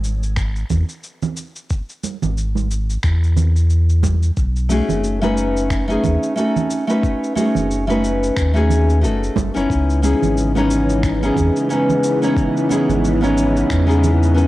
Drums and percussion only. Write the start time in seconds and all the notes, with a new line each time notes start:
0.04 cabasa
0.23 cabasa
0.36 finger snap, kick, cabasa
0.56 cabasa
0.70 kick, low conga, cabasa
0.89 cabasa
1.03 cabasa
1.22 low conga, cabasa
1.37 cabasa
1.56 cabasa
1.70 kick, cabasa
1.89 cabasa
2.04 high conga, cabasa
2.22 low conga, cabasa
2.37 cabasa
2.55 high conga, cabasa
2.71 cabasa
2.90 cabasa
3.03 finger snap, kick, cabasa
3.24 cabasa
3.36 low conga, cabasa
3.56 cabasa
3.70 cabasa
3.89 cabasa
4.03 kick, high conga, cabasa
4.23 cabasa
4.37 kick, cabasa
4.56 cabasa
4.69 high conga, cabasa
4.89 low conga, cabasa
5.04 cabasa
5.23 high conga, cabasa
5.37 cabasa
5.57 cabasa
5.70 finger snap, kick, cabasa
5.90 cabasa
6.04 kick, low conga, cabasa
6.23 cabasa
6.37 cabasa
6.56 low conga, cabasa
6.70 cabasa
6.90 cabasa
7.03 kick, cabasa
7.24 cabasa
7.36 high conga, cabasa
7.55 low conga, cabasa
7.71 cabasa
7.88 high conga, cabasa
8.04 cabasa
8.23 cabasa
8.37 finger snap, kick, cabasa
8.56 cabasa
8.69 low conga, cabasa
8.90 cabasa
9.04 cabasa
9.23 cabasa
9.36 kick, high conga, cabasa
9.56 cabasa
9.70 kick, cabasa
9.90 cabasa
10.03 high conga, cabasa
10.22 low conga, cabasa
10.37 cabasa
10.55 high conga, cabasa
10.71 cabasa
10.90 cabasa
11.03 finger snap, kick, cabasa
11.23 cabasa
11.36 kick, low conga, cabasa
11.56 cabasa
11.70 cabasa
11.89 low conga, cabasa
12.04 cabasa
12.23 cabasa
12.37 kick, cabasa
12.57 cabasa
12.70 high conga, cabasa
12.89 low conga, cabasa
13.04 cabasa
13.23 high conga, cabasa
13.38 cabasa
13.57 cabasa
13.70 finger snap, kick, cabasa
13.90 cabasa
14.04 low conga, cabasa
14.23 cabasa
14.38 cabasa